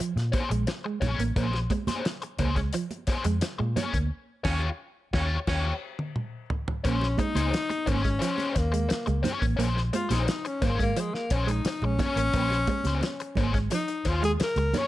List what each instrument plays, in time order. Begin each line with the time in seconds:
0.00 clean electric guitar F3, closed hi-hat
0.16 fingered electric bass A#2, muted clean electric guitar stroke, snare, closed hi-hat
0.32 overdriven electric guitar C#4 G#4 C5, kick, closed hi-hat, high conga
0.50 fingered electric bass A#1, clean electric guitar G#3, muted overdriven electric guitar stroke, closed hi-hat
0.67 muted overdriven electric guitar stroke, snare, closed hi-hat, muted conga
0.84 clean electric guitar G#3, muted overdriven electric guitar stroke
1.01 fingered electric bass A#1, overdriven electric guitar C#4 G#4 C#5, muted clean electric guitar stroke, kick, snare, closed hi-hat, high conga, low conga
1.19 fingered electric bass A1, clean electric guitar A#3, muted overdriven electric guitar stroke, closed hi-hat
1.36 fingered electric bass A#1, clean electric guitar A#3, overdriven electric guitar C#4 G#4 C5, kick, closed hi-hat
1.53 muted clean electric guitar stroke, snare, muted conga
1.70 clean electric guitar G#3, muted overdriven electric guitar stroke, kick, closed hi-hat, high conga
1.87 overdriven electric guitar C#4 G#4 C5, muted fingered electric bass stroke, snare, closed hi-hat, high conga
2.05 muted overdriven electric guitar stroke, muted clean electric guitar stroke, snare, closed hi-hat
2.22 muted overdriven electric guitar stroke, closed hi-hat
2.39 fingered electric bass C#2, clean electric guitar A#3, overdriven electric guitar C#4 G#4 C5, kick, closed hi-hat, low conga
2.56 clean electric guitar G#3, muted overdriven electric guitar stroke, kick, snare, closed hi-hat
2.73 clean electric guitar F3, muted overdriven electric guitar stroke, closed hi-hat
2.91 muted clean electric guitar stroke, closed hi-hat, muted conga
3.07 overdriven electric guitar C#4 G#4 C5, muted fingered electric bass stroke, kick, snare, closed hi-hat, high conga
3.24 fingered electric bass F2, clean electric guitar G#3, muted overdriven electric guitar stroke, closed hi-hat
3.41 muted overdriven electric guitar stroke, snare, closed hi-hat
3.58 fingered electric bass A#2, clean electric guitar G#3, muted overdriven electric guitar stroke
3.76 overdriven electric guitar C#4 G#4 C#5, muted clean electric guitar stroke, snare, closed hi-hat, high conga, low conga
3.93 fingered electric bass D2, clean electric guitar A#3, muted overdriven electric guitar stroke, kick, closed hi-hat
4.44 fingered electric bass D#2, baritone saxophone C#4, overdriven electric guitar F4 G4 C#5, kick, snare, crash
5.13 fingered electric bass D#2, baritone saxophone C#4, overdriven electric guitar F4 G4 C#5, kick, snare
5.47 fingered electric bass D#2, baritone saxophone C#4, overdriven electric guitar F4 G4 C#5, kick, snare, crash
5.99 high tom
6.16 mid tom
6.50 floor tom
6.68 floor tom
6.84 fingered electric bass A#1, clean electric guitar A#3, overdriven electric guitar C#4 G#4 C5, tenor saxophone C#4, kick, closed hi-hat
7.01 muted clean electric guitar stroke, snare, muted conga
7.18 clean electric guitar G#3, tenor saxophone D#4, muted overdriven electric guitar stroke, kick, closed hi-hat, high conga
7.35 fingered electric bass C#2, overdriven electric guitar C#4 G#4 C5, closed hi-hat, high conga
7.52 muted overdriven electric guitar stroke, muted clean electric guitar stroke, snare, closed hi-hat, muted conga
7.69 muted overdriven electric guitar stroke, closed hi-hat, muted conga
7.86 fingered electric bass G#1, clean electric guitar A#3, overdriven electric guitar C#4 G#4 C5, tenor saxophone C#4, kick, closed hi-hat, low conga
8.03 clean electric guitar G#3, muted overdriven electric guitar stroke, kick, snare, closed hi-hat
8.19 clean electric guitar F3, overdriven electric guitar C#4 G#4 C5, closed hi-hat
8.38 muted clean electric guitar stroke, closed hi-hat, muted conga
8.55 fingered electric bass D#2, tenor saxophone A#3, muted overdriven electric guitar stroke, kick, snare, closed hi-hat
8.72 clean electric guitar G#3, muted overdriven electric guitar stroke, closed hi-hat
8.89 muted overdriven electric guitar stroke, muted fingered electric bass stroke, snare, closed hi-hat
9.06 fingered electric bass C#2, clean electric guitar G#3, muted overdriven electric guitar stroke, closed hi-hat, muted conga
9.23 overdriven electric guitar C#4 G#4 C#5, muted clean electric guitar stroke, snare, closed hi-hat, high conga, low conga
9.41 fingered electric bass A1, clean electric guitar A#3, muted overdriven electric guitar stroke, kick, closed hi-hat
9.57 fingered electric bass A#1, clean electric guitar A#3, overdriven electric guitar C#4 G#4 C5, closed hi-hat, muted conga
9.76 muted clean electric guitar stroke, snare
9.93 clean electric guitar G#3, tenor saxophone F4, muted overdriven electric guitar stroke, closed hi-hat, high conga
10.09 fingered electric bass A#1, overdriven electric guitar C#4 G#4 C5, tenor saxophone D#4, snare, closed hi-hat, high conga
10.27 muted overdriven electric guitar stroke, muted clean electric guitar stroke, snare, closed hi-hat, muted conga
10.45 tenor saxophone C#4, muted overdriven electric guitar stroke, closed hi-hat
10.62 fingered electric bass G#1, clean electric guitar A#3, tenor saxophone A#3, overdriven electric guitar C#4 G#4 C5, kick, snare, closed hi-hat, low conga
10.79 clean electric guitar G#3, tenor saxophone A#3, muted overdriven electric guitar stroke, kick, closed hi-hat
10.96 clean electric guitar F3, tenor saxophone G#3, muted overdriven electric guitar stroke, closed hi-hat
11.14 tenor saxophone A#3, muted clean electric guitar stroke, snare
11.30 fingered electric bass A#1, overdriven electric guitar C#4 G#4 C5, tenor saxophone C#4, kick, closed hi-hat
11.47 clean electric guitar G#3, tenor saxophone D#4, muted overdriven electric guitar stroke, closed hi-hat
11.65 muted overdriven electric guitar stroke, snare, closed hi-hat, muted conga
11.82 fingered electric bass A#1, clean electric guitar G#3, tenor saxophone C#4, muted overdriven electric guitar stroke, muted conga
11.99 overdriven electric guitar C#4 G#4 C#5, muted clean electric guitar stroke, kick, snare, closed hi-hat, high conga, low conga
12.16 fingered electric bass A1, clean electric guitar A#3, muted overdriven electric guitar stroke, closed hi-hat
12.33 fingered electric bass A#1, clean electric guitar A#3, overdriven electric guitar C#4 G#4 C5, kick, closed hi-hat
12.50 muted clean electric guitar stroke, snare, muted conga
12.67 clean electric guitar G#3, muted overdriven electric guitar stroke, kick, closed hi-hat, high conga
12.84 fingered electric bass C#2, overdriven electric guitar C#4 G#4 C5, snare, closed hi-hat, high conga
13.01 muted overdriven electric guitar stroke, muted clean electric guitar stroke, snare, closed hi-hat, muted conga
13.20 muted overdriven electric guitar stroke, closed hi-hat
13.35 fingered electric bass G#1, clean electric guitar A#3, overdriven electric guitar C#4 G#4 C5, kick, closed hi-hat, low conga
13.54 clean electric guitar G#3, muted overdriven electric guitar stroke, kick, snare, closed hi-hat
13.70 clean electric guitar F3, tenor saxophone D#4, muted overdriven electric guitar stroke, closed hi-hat, muted conga
13.88 muted clean electric guitar stroke, closed hi-hat
14.05 fingered electric bass D#2, overdriven electric guitar C#4 G#4 C5, tenor saxophone F4, kick, snare, closed hi-hat
14.22 clean electric guitar G#3, tenor saxophone G#4, muted overdriven electric guitar stroke, closed hi-hat
14.40 tenor saxophone A#4, muted fingered electric bass stroke, muted overdriven electric guitar stroke, snare, closed hi-hat
14.56 fingered electric bass C#2, clean electric guitar G#3, muted overdriven electric guitar stroke, closed hi-hat, muted conga
14.74 overdriven electric guitar C#4 G#4 C#5, muted clean electric guitar stroke, snare, closed hi-hat, high conga, low conga
14.78 tenor saxophone C#5